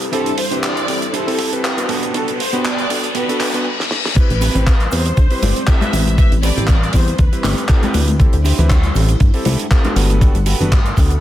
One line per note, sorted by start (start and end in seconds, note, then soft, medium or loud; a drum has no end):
0.00 3.62 G3 medium
0.00 0.10 G4 medium
0.00 closed hi-hat medium
0.00 riser medium
0.00 shaker medium
0.12 0.28 C4 medium
0.12 0.32 D4 loud
0.12 1.88 D4 medium
0.12 1.87 E4 medium
0.12 0.32 E4 loud
0.12 0.28 E4 medium
0.12 0.32 G4 loud
0.12 0.28 G4 medium
0.12 0.36 A4 loud
0.12 0.28 A4 loud
0.12 1.87 C5 medium
0.12 0.32 C5 loud
0.12 closed hi-hat medium
0.12 shaker medium
0.26 closed hi-hat medium
0.26 shaker soft
0.38 0.63 C5 loud
0.38 open hi-hat loud
0.38 shaker medium
0.51 0.65 C4 medium
0.51 0.82 D4 medium
0.51 0.82 E4 medium
0.51 0.65 E4 medium
0.51 0.83 G4 medium
0.51 0.65 G4 medium
0.51 0.66 B4 loud
0.51 0.83 C5 loud
0.51 closed hi-hat medium
0.51 shaker medium
0.63 1.10 D5 loud
0.63 clap loud
0.63 closed hi-hat medium
0.63 shaker medium
0.77 closed hi-hat medium
0.77 shaker soft
0.88 1.04 C4 medium
0.88 1.04 E4 medium
0.88 1.04 G4 medium
0.88 1.04 A4 medium
0.88 open hi-hat loud
0.88 shaker medium
1.02 closed hi-hat medium
1.02 shaker medium
1.13 1.27 D4 medium
1.13 1.27 E4 medium
1.13 1.27 G4 medium
1.13 1.64 A4 loud
1.13 1.28 C5 loud
1.13 closed hi-hat medium
1.13 shaker medium
1.27 1.48 C4 loud
1.27 1.48 E4 medium
1.27 1.49 G4 medium
1.27 1.49 A4 loud
1.27 open hi-hat medium
1.27 shaker soft
1.38 muted clean electric guitar stroke medium
1.38 open hi-hat loud
1.38 shaker loud
1.52 1.74 C4 medium
1.52 1.74 E4 medium
1.52 1.75 G4 medium
1.52 1.75 B4 loud
1.52 muted clean electric guitar stroke soft
1.52 closed hi-hat medium
1.52 shaker soft
1.64 1.89 G4 medium
1.64 clap loud
1.64 closed hi-hat medium
1.64 shaker medium
1.77 2.12 B3 medium
1.77 2.12 D4 medium
1.77 2.12 F#4 medium
1.77 2.12 B4 medium
1.77 closed hi-hat medium
1.77 shaker soft
1.88 2.39 B3 loud
1.88 2.40 F#4 medium
1.88 2.40 G4 medium
1.88 3.64 A4 medium
1.88 2.40 A4 loud
1.88 3.64 B4 loud
1.88 3.64 F#5 medium
1.88 open hi-hat loud
1.88 shaker medium
2.03 closed hi-hat medium
2.03 shaker medium
2.14 2.29 B3 medium
2.14 2.30 D4 medium
2.14 2.30 F#4 medium
2.14 2.26 A4 medium
2.14 2.30 A4 loud
2.14 closed hi-hat medium
2.14 shaker medium
2.28 closed hi-hat medium
2.28 shaker soft
2.40 2.63 C5 loud
2.40 open hi-hat loud
2.40 shaker medium
2.53 2.84 B3 medium
2.53 2.67 B3 medium
2.53 2.67 D4 medium
2.53 2.67 F#4 medium
2.53 2.84 F#4 medium
2.53 2.84 G4 medium
2.53 2.67 B4 loud
2.53 2.85 B4 loud
2.53 closed hi-hat medium
2.53 shaker medium
2.65 3.12 D5 loud
2.65 clap loud
2.65 closed hi-hat medium
2.65 shaker medium
2.78 closed hi-hat medium
2.78 shaker soft
2.89 3.05 B3 medium
2.89 3.05 D4 medium
2.89 3.05 F#4 medium
2.89 3.06 A4 medium
2.89 open hi-hat loud
2.89 shaker medium
3.04 closed hi-hat medium
3.04 shaker medium
3.15 3.29 B3 medium
3.15 3.29 F#4 medium
3.15 3.29 G4 medium
3.15 3.29 A4 loud
3.15 3.62 B4 loud
3.15 closed hi-hat medium
3.15 reverse cymbal medium
3.15 shaker medium
3.28 3.50 B3 medium
3.28 3.50 D4 medium
3.28 3.50 F#4 medium
3.28 3.50 A4 loud
3.28 closed hi-hat medium
3.28 shaker soft
3.40 muted clean electric guitar stroke medium
3.40 clap medium
3.40 open hi-hat loud
3.40 shaker medium
3.53 3.65 B3 medium
3.53 3.66 D4 medium
3.53 3.66 F#4 medium
3.53 3.66 B4 loud
3.53 muted clean electric guitar stroke soft
3.53 closed hi-hat medium
3.53 shaker soft
3.80 snare medium
3.91 snare medium
4.05 snare medium
4.16 4.27 A1 soft
4.16 9.92 G3 medium
4.16 4.31 C4 medium
4.16 8.16 C4 medium
4.16 4.32 E4 medium
4.16 4.32 G4 medium
4.16 4.88 B4 loud
4.16 4.32 B4 loud
4.16 8.16 B5 medium
4.16 kick loud
4.16 closed hi-hat medium
4.16 crash loud
4.16 cabasa medium
4.16 shaker medium
4.30 4.50 A1 loud
4.30 closed hi-hat medium
4.30 shaker soft
4.41 4.73 C4 loud
4.41 4.73 G4 loud
4.41 4.74 A4 loud
4.41 4.74 B4 loud
4.41 open hi-hat loud
4.41 cabasa loud
4.41 shaker medium
4.55 4.88 A1 medium
4.55 4.68 C4 medium
4.55 4.69 E4 medium
4.55 4.69 G4 medium
4.55 4.69 C5 loud
4.55 closed hi-hat medium
4.55 low conga medium
4.55 cabasa soft
4.55 shaker soft
4.67 kick loud
4.67 clap loud
4.67 closed hi-hat medium
4.67 cabasa medium
4.67 shaker medium
4.80 closed hi-hat medium
4.80 shaker soft
4.91 5.12 E2 medium
4.91 5.07 C4 medium
4.91 5.07 E4 medium
4.91 5.07 G4 medium
4.91 5.08 B4 medium
4.91 5.68 C5 loud
4.91 open hi-hat loud
4.91 cabasa loud
4.91 shaker medium
5.05 muted clean electric guitar stroke medium
5.05 closed hi-hat medium
5.05 cabasa soft
5.05 shaker medium
5.17 5.28 D2 medium
5.17 muted clean electric guitar stroke soft
5.17 kick loud
5.17 closed hi-hat medium
5.17 cabasa medium
5.17 shaker medium
5.31 5.52 C4 medium
5.31 5.52 E4 medium
5.31 5.52 G4 medium
5.31 5.52 B4 loud
5.31 open hi-hat medium
5.31 cabasa soft
5.31 shaker soft
5.42 5.53 G1 loud
5.42 5.62 C4 loud
5.42 5.62 G4 loud
5.42 5.62 A4 loud
5.42 5.62 D5 loud
5.42 open hi-hat loud
5.42 high conga medium
5.42 cabasa medium
5.42 shaker medium
5.56 closed hi-hat medium
5.56 cabasa soft
5.56 shaker medium
5.67 5.78 C4 loud
5.67 5.78 E4 medium
5.67 5.78 G4 medium
5.67 5.78 A4 loud
5.67 6.17 E5 loud
5.67 kick loud
5.67 clap loud
5.67 closed hi-hat medium
5.67 cabasa medium
5.67 shaker medium
5.81 6.15 C4 medium
5.81 5.93 C4 medium
5.81 6.15 E4 medium
5.81 6.15 G4 medium
5.81 5.93 G4 medium
5.81 5.93 A4 medium
5.81 6.15 B4 loud
5.81 5.93 B4 loud
5.81 closed hi-hat medium
5.81 high conga loud
5.81 shaker soft
5.93 6.27 A1 loud
5.93 open hi-hat loud
5.93 high conga medium
5.93 cabasa medium
5.93 shaker loud
6.06 muted clean electric guitar stroke soft
6.06 closed hi-hat medium
6.06 high conga medium
6.06 cabasa soft
6.06 shaker medium
6.17 6.33 C4 medium
6.17 6.33 E4 medium
6.17 6.33 G4 medium
6.17 6.34 B4 loud
6.17 6.30 E5 loud
6.17 kick loud
6.17 closed hi-hat medium
6.17 cabasa medium
6.17 shaker medium
6.32 6.51 A1 loud
6.32 closed hi-hat medium
6.32 shaker soft
6.43 6.75 C4 loud
6.43 6.75 G4 loud
6.43 6.75 A4 loud
6.43 6.76 B4 loud
6.43 6.90 D5 loud
6.43 open hi-hat loud
6.43 cabasa loud
6.43 shaker medium
6.56 6.90 A1 medium
6.56 6.70 C4 medium
6.56 6.70 E4 medium
6.56 6.70 G4 medium
6.56 6.71 C5 loud
6.56 closed hi-hat medium
6.56 low conga medium
6.56 cabasa soft
6.56 shaker medium
6.67 kick loud
6.67 clap loud
6.67 closed hi-hat medium
6.67 cabasa medium
6.67 shaker medium
6.83 closed hi-hat medium
6.83 shaker soft
6.93 7.14 E2 medium
6.93 7.09 C4 medium
6.93 7.09 E4 medium
6.93 7.09 G4 medium
6.93 7.09 B4 medium
6.93 7.19 C5 medium
6.93 kick medium
6.93 open hi-hat loud
6.93 cabasa medium
6.93 shaker medium
7.07 muted clean electric guitar stroke medium
7.07 closed hi-hat medium
7.07 cabasa soft
7.07 shaker soft
7.18 7.30 D2 medium
7.18 7.95 B4 medium
7.18 muted clean electric guitar stroke soft
7.18 kick loud
7.18 closed hi-hat medium
7.18 low conga medium
7.18 cabasa soft
7.18 shaker medium
7.32 7.42 G1 soft
7.32 7.53 C4 loud
7.32 7.54 E4 medium
7.32 7.54 G4 medium
7.32 7.54 B4 loud
7.32 closed hi-hat medium
7.32 cabasa soft
7.32 shaker soft
7.43 7.55 G1 loud
7.43 7.63 C4 loud
7.43 7.63 G4 loud
7.43 7.64 A4 loud
7.43 7.64 D5 loud
7.43 clap medium
7.43 open hi-hat loud
7.43 high conga medium
7.43 cabasa medium
7.43 shaker medium
7.58 closed hi-hat medium
7.58 cabasa soft
7.58 shaker soft
7.69 7.79 C4 loud
7.69 7.79 E4 medium
7.69 7.80 G4 medium
7.69 7.80 A4 loud
7.69 kick loud
7.69 clap loud
7.69 closed hi-hat medium
7.69 cabasa medium
7.69 shaker medium
7.82 7.94 C4 medium
7.82 8.17 C4 medium
7.82 8.17 E4 medium
7.82 7.94 G4 medium
7.82 8.17 G4 medium
7.82 7.95 A4 medium
7.82 8.17 B4 loud
7.82 7.95 B4 loud
7.82 closed hi-hat medium
7.82 high conga medium
7.82 shaker soft
7.94 8.29 D2 loud
7.94 open hi-hat loud
7.94 high conga medium
7.94 cabasa medium
7.94 shaker medium
8.08 muted clean electric guitar stroke soft
8.08 closed hi-hat medium
8.08 high conga medium
8.08 cabasa soft
8.08 shaker medium
8.19 8.35 C4 medium
8.19 8.35 E4 medium
8.19 9.94 E4 medium
8.19 8.35 G4 medium
8.19 8.35 A4 loud
8.19 9.94 C5 medium
8.19 kick loud
8.19 closed hi-hat medium
8.19 cabasa medium
8.33 8.53 D2 loud
8.33 closed hi-hat medium
8.33 shaker soft
8.44 8.77 D4 loud
8.44 8.77 E4 loud
8.44 8.77 G4 loud
8.44 8.77 C5 loud
8.44 open hi-hat loud
8.44 cabasa medium
8.44 shaker medium
8.58 8.92 D2 medium
8.58 8.72 C4 medium
8.58 8.72 E4 medium
8.58 8.72 G4 medium
8.58 8.72 B4 loud
8.58 closed hi-hat medium
8.58 low conga loud
8.58 cabasa soft
8.58 shaker soft
8.70 kick loud
8.70 clap loud
8.70 closed hi-hat medium
8.70 cabasa medium
8.83 closed hi-hat medium
8.83 shaker soft
8.95 9.16 A1 medium
8.95 9.10 C4 medium
8.95 9.11 E4 medium
8.95 9.11 G4 medium
8.95 9.11 A4 medium
8.95 open hi-hat loud
8.95 cabasa medium
8.95 shaker medium
9.08 muted clean electric guitar stroke medium
9.08 closed hi-hat medium
9.08 cabasa soft
9.08 shaker medium
9.20 9.31 G2 medium
9.20 muted clean electric guitar stroke soft
9.20 kick loud
9.20 closed hi-hat medium
9.20 cabasa soft
9.20 shaker medium
9.34 9.55 C4 loud
9.34 9.55 E4 medium
9.34 9.55 G4 medium
9.34 9.56 A4 loud
9.34 open hi-hat medium
9.34 cabasa soft
9.34 shaker soft
9.45 9.56 C2 loud
9.45 9.65 D4 loud
9.45 9.65 E4 loud
9.45 9.65 G4 loud
9.45 9.65 A4 loud
9.45 open hi-hat loud
9.45 high conga loud
9.45 cabasa medium
9.45 shaker medium
9.59 closed hi-hat medium
9.59 cabasa soft
9.59 shaker medium
9.71 9.81 C4 loud
9.71 9.81 E4 medium
9.71 9.81 G4 medium
9.71 9.82 A4 loud
9.71 kick loud
9.71 clap loud
9.71 closed hi-hat medium
9.71 cabasa soft
9.71 shaker medium
9.84 10.18 B3 medium
9.84 9.96 D4 medium
9.84 10.19 D4 medium
9.84 9.95 E4 medium
9.84 10.19 F#4 medium
9.84 9.95 G4 medium
9.84 10.19 A4 medium
9.84 9.96 C5 loud
9.84 closed hi-hat medium
9.84 high conga loud
9.84 shaker soft
9.95 10.30 G1 loud
9.95 11.21 A3 medium
9.95 10.37 F#4 loud
9.95 10.37 G4 medium
9.95 10.37 A4 medium
9.95 10.37 B4 loud
9.95 11.21 F#5 medium
9.95 11.21 B5 loud
9.95 open hi-hat loud
9.95 high conga medium
9.95 cabasa medium
9.95 shaker medium
10.09 closed hi-hat medium
10.09 high conga medium
10.09 cabasa soft
10.09 shaker medium
10.21 10.37 B3 medium
10.21 10.37 D4 medium
10.21 10.37 F#4 medium
10.21 10.37 A4 loud
10.21 kick loud
10.21 closed hi-hat medium
10.21 cabasa medium
10.21 shaker medium
10.35 10.54 G1 loud
10.35 closed hi-hat medium
10.35 cabasa soft
10.35 shaker soft
10.46 10.78 F#4 loud
10.46 10.79 G4 loud
10.46 10.79 A4 loud
10.46 10.79 B4 loud
10.46 open hi-hat loud
10.46 cabasa medium
10.46 shaker medium
10.60 10.93 G1 medium
10.60 10.74 B3 medium
10.60 10.74 D4 medium
10.60 10.74 F#4 medium
10.60 10.74 B4 loud
10.60 closed hi-hat soft
10.60 low conga medium
10.60 cabasa soft
10.60 shaker medium
10.72 kick loud
10.72 clap loud
10.72 closed hi-hat medium
10.72 cabasa medium
10.86 closed hi-hat medium
10.86 cabasa soft
10.86 shaker soft
10.97 11.17 D2 medium
10.97 11.12 B3 medium
10.97 11.12 D4 medium
10.97 11.13 F#4 medium
10.97 11.13 A4 medium
10.97 kick medium
10.97 open hi-hat loud
10.97 cabasa medium
10.97 shaker medium
11.10 muted clean electric guitar stroke medium
11.10 closed hi-hat medium
11.10 cabasa soft
11.10 shaker soft